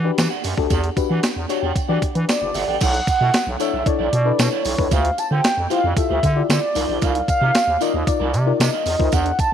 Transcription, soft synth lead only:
2.29 2.78 D5 medium
2.82 3.06 F#5 loud
3.09 3.57 F#5 loud
3.61 3.89 E5 medium
3.87 4.41 D5 loud
4.40 4.94 C#5 loud
4.92 5.20 F5 loud
5.19 5.32 A5 loud
5.32 5.68 G5 medium
5.71 5.95 F5 loud
5.97 6.46 E5 loud
6.50 7.05 D5 loud
7.03 7.29 F5 loud
7.30 7.83 F5 loud
7.82 8.10 D#5 loud
8.08 8.62 D5 loud
8.61 9.15 D#5 loud
9.13 9.39 F#5 loud
9.40 9.54 A5 loud

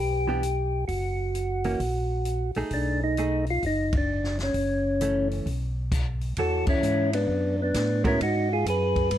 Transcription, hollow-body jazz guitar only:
0.27 0.42 E3 medium
0.27 0.42 B3 medium
0.27 0.42 D4 medium
0.27 0.42 G4 medium
1.65 1.79 E3 medium
1.65 1.79 A#3 medium
1.65 1.79 C#4 medium
2.57 3.14 A3 medium
2.57 3.15 D#4 medium
2.57 3.15 G#4 medium
3.18 3.45 A3 medium
3.18 3.45 D#4 medium
3.18 3.45 G#4 medium
5.01 5.46 E3 soft
5.01 5.47 A3 medium
5.01 5.47 C#4 medium
6.38 7.07 E3 medium
6.38 7.08 A4 medium
6.38 7.08 C#5 medium
8.04 8.18 G#3 medium
8.04 8.19 B3 medium
8.04 8.19 F#4 medium
8.04 8.19 A#4 medium

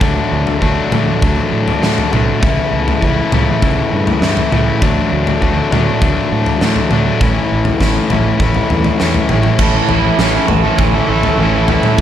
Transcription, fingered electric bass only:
0.01 0.19 D2 medium
0.32 0.50 D2 medium
0.61 0.79 D2 medium
0.91 1.09 D2 medium
1.22 1.40 D2 medium
1.52 1.70 A2 medium
1.82 2.00 A2 medium
2.14 2.31 C2 medium
2.43 2.60 C#2 medium
2.73 2.90 C#2 medium
3.02 3.20 C#2 medium
3.33 3.51 C#2 medium
3.62 3.80 C#2 medium
3.93 4.10 G2 medium
4.21 4.39 G2 medium
4.52 4.70 C#2 medium
4.82 5.00 D2 medium
5.12 5.30 D2 medium
5.42 5.60 D2 medium
5.72 5.90 D2 medium
6.02 6.20 D2 medium
6.32 6.50 A2 medium
6.62 6.80 A2 medium
6.92 7.09 D2 medium
7.21 7.39 A1 medium
7.52 7.70 A1 medium
7.81 7.99 A1 medium
8.12 8.30 A1 medium
8.40 8.58 A1 medium
8.71 8.89 E2 medium
9.01 9.19 E2 medium
9.30 9.48 A1 medium
9.59 9.79 A1 medium
9.89 10.09 A1 medium
10.18 10.38 A1 medium
10.49 10.69 A1 medium
10.79 10.99 A1 medium
11.08 11.28 A1 medium
11.38 11.77 A1 medium

